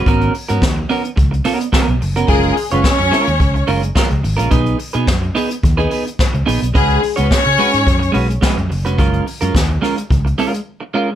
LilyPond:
<<
  \new Staff \with { instrumentName = "String section" } { \time 4/4 \key fis \major \tempo 4 = 108 r1 | <gis gis'>8 r16 <b b'>16 <cis' cis''>4. r4. | r1 | <gis gis'>8 r16 <b b'>16 <cis' cis''>4. r4. |
r1 | }
  \new Staff \with { instrumentName = "Clean electric guitar" } { \time 4/4 \key fis \major <b cis' fis' ais'>8 r16 <b cis' fis' ais'>16 r8 <b cis' fis' ais'>16 r8. <b cis' fis' ais'>16 r16 <b cis' fis' ais'>16 r8 <b cis' fis' ais'>16 | <gis cis' eis' ais'>8 r16 <gis cis' eis' cis''>16 r8 <gis cis' eis' ais'>16 r8. <gis cis' eis' ais'>16 r16 <gis cis' eis' ais'>16 r8 <gis cis' eis' ais'>16 | <b dis' gis' b'>8 r16 <b dis' gis' b'>16 r8 <b dis' gis' b'>16 r8 <b dis' gis' b'>16 <b dis' gis' b'>16 r8. <b dis' gis' b'>16 r16 | <gis cis' fis' b'>8 r16 <gis cis' fis' cis''>16 r8 <gis cis' fis' b'>16 r8. <gis cis' fis' b'>16 r16 <gis cis' fis' b'>16 r8 <gis cis' fis' b'>16 |
<gis cis' eis' ais'>8 r16 <gis cis' eis' ais'>16 r8 <gis cis' eis' ais'>16 r8. <gis cis' eis' ais'>16 r8. <gis cis' eis' ais'>16 r16 | }
  \new Staff \with { instrumentName = "Fingered electric bass" } { \clef bass \time 4/4 \key fis \major gis,,8 r16 gis,16 dis,8 r8 cis,8 r8. b,,16 fis,,16 eis,,16 | fis,,8 r16 fis,,16 r16 fis,16 r16 dis,16 cis,8 fis,,8 r16 cis,16 gis,,16 ais,,16 | b,,8 r16 b,16 fis,8 r8 dis,8 r8. cis,16 ais,,16 b,,16 | cis,8 r16 cis,16 r16 cis16 r16 gis,16 fis,8 b,,8 r16 fis,16 fis,,16 eis,,16 |
fis,,8 r16 fis,16 dis,8 r8 cis,8 r4. | }
  \new DrumStaff \with { instrumentName = "Drums" } \drummode { \time 4/4 <hh bd>16 hh16 hho16 hh16 <hh bd sn>16 hh16 hho16 hh16 <hh bd>16 hh16 hho16 hh16 <hh bd sn>16 hh16 hho16 hh16 | <hh bd>16 hh16 hho16 hh16 <hh bd sn>16 hh16 <hho sn>16 hh16 <hh bd>16 hh16 hho16 hh16 <hh bd sn>16 hh16 hho16 hh16 | <hh bd>16 hh16 hho16 hh16 <hh bd sn>16 hh16 hho16 hh16 <hh bd>16 hh16 hho16 hh16 <hh bd sn>16 hh16 hho16 hh16 | <hh bd>16 hh16 hho16 hh16 <hh bd sn>16 hh16 hho16 hh16 <hh bd>16 hh16 hho16 hh16 <hh bd sn>16 hh16 hho16 hh16 |
<hh bd>16 hh16 hho16 hh16 <hh bd sn>16 hh16 <hho sn>16 hh16 <hh bd>16 hh16 hho16 hh16 r4 | }
>>